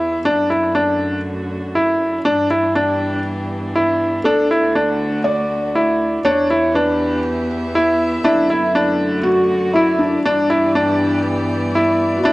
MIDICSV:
0, 0, Header, 1, 5, 480
1, 0, Start_track
1, 0, Key_signature, 2, "major"
1, 0, Tempo, 500000
1, 243, Time_signature, 4, 2, 24, 8
1, 11834, End_track
2, 0, Start_track
2, 0, Title_t, "Felt piano"
2, 0, Program_c, 0, 0
2, 4071, Note_on_c, 0, 69, 81
2, 5033, Note_on_c, 0, 74, 88
2, 5066, Note_off_c, 0, 69, 0
2, 5997, Note_on_c, 0, 73, 91
2, 6027, Note_off_c, 0, 74, 0
2, 6446, Note_off_c, 0, 73, 0
2, 6473, Note_on_c, 0, 71, 63
2, 7159, Note_off_c, 0, 71, 0
2, 7912, Note_on_c, 0, 64, 94
2, 8864, Note_on_c, 0, 66, 89
2, 8906, Note_off_c, 0, 64, 0
2, 9319, Note_off_c, 0, 66, 0
2, 9345, Note_on_c, 0, 64, 87
2, 9588, Note_on_c, 0, 62, 72
2, 9601, Note_off_c, 0, 64, 0
2, 11237, Note_off_c, 0, 62, 0
2, 11678, Note_on_c, 0, 66, 59
2, 11744, Note_on_c, 0, 64, 85
2, 11754, Note_off_c, 0, 66, 0
2, 11834, Note_off_c, 0, 64, 0
2, 11834, End_track
3, 0, Start_track
3, 0, Title_t, "Grand piano"
3, 0, Program_c, 1, 0
3, 0, Note_on_c, 1, 64, 66
3, 164, Note_off_c, 1, 64, 0
3, 243, Note_on_c, 1, 62, 76
3, 445, Note_off_c, 1, 62, 0
3, 481, Note_on_c, 1, 64, 60
3, 685, Note_off_c, 1, 64, 0
3, 719, Note_on_c, 1, 62, 71
3, 1126, Note_off_c, 1, 62, 0
3, 1683, Note_on_c, 1, 64, 67
3, 2088, Note_off_c, 1, 64, 0
3, 2160, Note_on_c, 1, 62, 77
3, 2364, Note_off_c, 1, 62, 0
3, 2404, Note_on_c, 1, 64, 64
3, 2606, Note_off_c, 1, 64, 0
3, 2643, Note_on_c, 1, 62, 64
3, 3048, Note_off_c, 1, 62, 0
3, 3604, Note_on_c, 1, 64, 68
3, 4008, Note_off_c, 1, 64, 0
3, 4081, Note_on_c, 1, 62, 78
3, 4284, Note_off_c, 1, 62, 0
3, 4327, Note_on_c, 1, 64, 61
3, 4528, Note_off_c, 1, 64, 0
3, 4563, Note_on_c, 1, 62, 69
3, 4968, Note_off_c, 1, 62, 0
3, 5524, Note_on_c, 1, 64, 65
3, 5928, Note_off_c, 1, 64, 0
3, 6002, Note_on_c, 1, 62, 82
3, 6205, Note_off_c, 1, 62, 0
3, 6244, Note_on_c, 1, 64, 67
3, 6446, Note_off_c, 1, 64, 0
3, 6483, Note_on_c, 1, 62, 68
3, 6888, Note_off_c, 1, 62, 0
3, 7442, Note_on_c, 1, 64, 71
3, 7848, Note_off_c, 1, 64, 0
3, 7917, Note_on_c, 1, 62, 80
3, 8122, Note_off_c, 1, 62, 0
3, 8161, Note_on_c, 1, 64, 64
3, 8364, Note_off_c, 1, 64, 0
3, 8401, Note_on_c, 1, 62, 77
3, 8807, Note_off_c, 1, 62, 0
3, 9366, Note_on_c, 1, 64, 71
3, 9770, Note_off_c, 1, 64, 0
3, 9845, Note_on_c, 1, 62, 84
3, 10046, Note_off_c, 1, 62, 0
3, 10079, Note_on_c, 1, 64, 67
3, 10283, Note_off_c, 1, 64, 0
3, 10323, Note_on_c, 1, 62, 73
3, 10728, Note_off_c, 1, 62, 0
3, 11282, Note_on_c, 1, 64, 69
3, 11687, Note_off_c, 1, 64, 0
3, 11760, Note_on_c, 1, 62, 86
3, 11834, Note_off_c, 1, 62, 0
3, 11834, End_track
4, 0, Start_track
4, 0, Title_t, "String quartet"
4, 0, Program_c, 2, 48
4, 0, Note_on_c, 2, 52, 50
4, 0, Note_on_c, 2, 59, 59
4, 0, Note_on_c, 2, 67, 61
4, 0, Note_on_c, 2, 76, 56
4, 240, Note_on_c, 2, 50, 59
4, 243, Note_off_c, 2, 67, 0
4, 244, Note_off_c, 2, 52, 0
4, 422, Note_on_c, 2, 57, 67
4, 460, Note_on_c, 2, 62, 74
4, 1003, Note_on_c, 2, 66, 73
4, 1007, Note_off_c, 2, 59, 0
4, 1009, Note_off_c, 2, 76, 0
4, 2157, Note_off_c, 2, 66, 0
4, 2159, Note_off_c, 2, 57, 0
4, 2159, Note_on_c, 2, 52, 64
4, 2161, Note_off_c, 2, 50, 0
4, 2482, Note_on_c, 2, 67, 66
4, 2556, Note_on_c, 2, 59, 63
4, 4075, Note_on_c, 2, 50, 61
4, 4080, Note_off_c, 2, 67, 0
4, 4081, Note_off_c, 2, 52, 0
4, 4272, Note_on_c, 2, 57, 73
4, 4471, Note_on_c, 2, 66, 66
4, 4850, Note_off_c, 2, 59, 0
4, 5999, Note_off_c, 2, 50, 0
4, 6000, Note_off_c, 2, 57, 0
4, 6004, Note_off_c, 2, 66, 0
4, 6006, Note_on_c, 2, 52, 63
4, 6205, Note_on_c, 2, 59, 68
4, 6271, Note_on_c, 2, 67, 66
4, 6614, Note_off_c, 2, 62, 0
4, 6847, Note_on_c, 2, 76, 74
4, 7924, Note_off_c, 2, 52, 0
4, 7925, Note_on_c, 2, 50, 64
4, 7929, Note_off_c, 2, 67, 0
4, 8146, Note_on_c, 2, 57, 62
4, 8668, Note_off_c, 2, 76, 0
4, 8692, Note_off_c, 2, 59, 0
4, 8736, Note_on_c, 2, 66, 74
4, 8787, Note_on_c, 2, 74, 72
4, 9840, Note_on_c, 2, 52, 69
4, 9842, Note_off_c, 2, 66, 0
4, 9844, Note_off_c, 2, 50, 0
4, 9844, Note_off_c, 2, 57, 0
4, 10014, Note_on_c, 2, 59, 62
4, 10090, Note_on_c, 2, 67, 66
4, 11761, Note_off_c, 2, 52, 0
4, 11761, Note_on_c, 2, 50, 64
4, 11763, Note_off_c, 2, 67, 0
4, 11834, Note_off_c, 2, 50, 0
4, 11834, Note_off_c, 2, 59, 0
4, 11834, Note_off_c, 2, 74, 0
4, 11834, End_track
5, 0, Start_track
5, 0, Title_t, "Cello section"
5, 0, Program_c, 3, 48
5, 0, Note_on_c, 3, 40, 71
5, 219, Note_off_c, 3, 40, 0
5, 248, Note_on_c, 3, 42, 73
5, 2141, Note_off_c, 3, 42, 0
5, 2166, Note_on_c, 3, 43, 73
5, 4061, Note_off_c, 3, 43, 0
5, 4088, Note_on_c, 3, 38, 73
5, 5981, Note_off_c, 3, 38, 0
5, 6010, Note_on_c, 3, 40, 72
5, 7902, Note_off_c, 3, 40, 0
5, 7926, Note_on_c, 3, 42, 77
5, 9820, Note_off_c, 3, 42, 0
5, 9846, Note_on_c, 3, 43, 78
5, 11740, Note_off_c, 3, 43, 0
5, 11764, Note_on_c, 3, 38, 83
5, 11834, Note_off_c, 3, 38, 0
5, 11834, End_track
0, 0, End_of_file